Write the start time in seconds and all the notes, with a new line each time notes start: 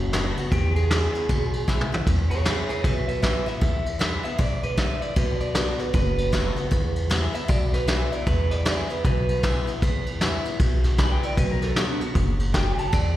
Already playing: F#1 F#2
0.13 D#3 A3 B3 F#4, snare, ride
0.37 B3 F#4, ride
0.52 E2 G4, kick, ride
0.76 G#4, ride
0.91 E3 G#3 B3 E4, snare, ride
1.15 B3 E4, ride
1.29 B1 B2, kick, ride
1.53 ride
1.68 E3 G#3 B3 E4, kick, snare
1.81 mid tom
1.92 B3 E4, floor tom
2.07 E2, kick, ride
2.30 G#4 C#5, ride
2.45 E3 G#3 B3 E4 G#4 C#5, snare, ride
2.69 B3 E4 G#4 C#5, ride
2.84 B1 B2 B4 E5, kick, ride
3.08 B4 E5, ride
3.22 E3 G#3 B3 E4 B4 E5, kick, snare, ride
3.46 B3 E4 E5, ride
3.61 E2, kick, snare, ride
3.86 ride
3.99 E3 G#3 B3 E4, snare, ride
4.23 B3 E4 E5, ride
4.38 B1 G#2 D5, kick, ride
4.63 B4, ride
4.77 A2 E5, kick, snare, ride
5.02 D5, ride
5.16 B1 B2 B4, kick, ride
5.40 D5, ride
5.55 D#3 A3 B3 F#4 D5, snare, ride
5.79 B3 F#4 B4, snare, ride
5.94 F#1 F#2 B4, kick, ride
6.18 ride
6.32 D#3 A3 B3 F#4, kick, snare, ride
6.56 B3 F#4, ride
6.71 E2, kick, ride
6.96 ride
7.10 E3 G#3 B3 E4, snare, ride
7.34 B3 E4 E5, ride
7.48 B1 B2 D5, kick, ride
7.74 B4, snare, ride
7.88 E3 G#3 B3 E4 E5, snare, ride
8.12 B3 E4 D5, ride
8.27 E2 B4, kick, ride
8.51 D5, snare, ride
8.65 E3 G#3 B3 E4 D5, snare, ride
8.89 B3 E4 B4, ride
9.04 B1 B2 B4, kick, ride
9.29 ride
9.43 E3 G#3 B3 E4, kick, snare, ride
9.67 B3 E4, ride
9.82 E2, kick, ride
10.06 ride
10.21 E3 G#3 B3 E4, snare, ride
10.45 B3 E4, ride
10.59 B1 B2, kick, ride
10.84 snare, ride
10.98 E3 G#3 B3 E4 B5, kick, snare, ride
11.12 G5
11.23 B3 E4 D5, ride
11.37 B1 B2 B4, kick, ride
11.51 A#4
11.62 A4, snare, ride
11.76 D#3 A3 B3 F#4 G4, snare, ride
11.89 D4
12.01 B3 F#4, ride
12.15 F#1 G#2, kick, ride
12.40 ride
12.54 F#2 G5, kick, snare, ride
12.78 A5, ride
12.93 E2 D5, kick, snare, ride